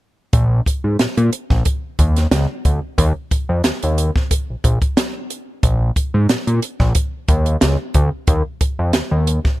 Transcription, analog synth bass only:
0.33 A#1
0.84 G#2
1.00 A#2
1.17 A#2
1.50 A#1
1.99 D#2
2.32 C#2
2.65 D2
2.98 D#2
3.49 F2
3.65 D#2
3.83 D#2
4.50 A#1
4.64 A#1
5.63 A#1
6.14 G#2
6.29 A#2
6.47 A#2
6.80 A#1
7.29 D#2
7.62 C#2
7.95 D2
8.28 D#2
8.79 F2
8.95 D#2
9.11 D#2

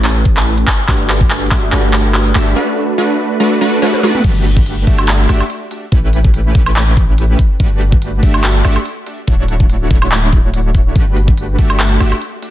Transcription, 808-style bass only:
Already playing: A1
0.89 G1
1.51 G1
1.72 G1
2.35 G1
4.24 G1
4.87 G1
5.29 G1
5.92 A1
6.55 A1
7.60 G1
8.23 G1
8.65 G1
9.28 D1
9.91 D1
10.96 G1
11.59 G1
12.00 G1

